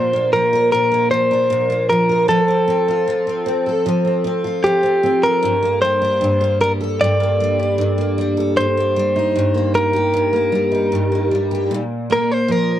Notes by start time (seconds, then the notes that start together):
Already playing: A#2 F3 A#3 D4 C5
0.13 A#3
0.33 F3 A#4
0.53 A#4
0.72 A#2 A#4
0.92 A#3
1.11 F3 C5
1.31 D4
1.50 A#2
1.70 A#3
1.89 F3 A#4
2.09 A#4
2.28 F3 A4
2.48 C4
2.68 C4
2.88 F4
3.08 F3
3.27 C4
3.46 C4
3.66 A4
3.86 F3
4.05 C4
4.24 C4
4.44 F4
4.64 F3 G4
4.83 C4
5.03 C4
5.23 A4 A#4
5.43 G2
5.63 A#3
5.82 G3 C5
6.02 D4
6.21 G2
6.41 A#3
6.61 G3 A#4
6.81 A4
7.01 G2 D5
7.20 A#3
7.40 G3
7.60 D4
7.78 G2
7.98 A#3
8.18 G3
8.37 A4
8.57 G2 C5
8.77 A#3
8.96 G3
9.16 D#4
9.35 G2
9.54 A#3
9.74 G3 A#4
9.93 G4
10.13 G2
10.33 A#3
10.52 G3
10.72 D#4
10.92 G2
11.12 A#3
11.31 G3
11.51 G4
11.71 A#2
12.10 A#3 A#4
12.32 C5
12.48 F3 A#4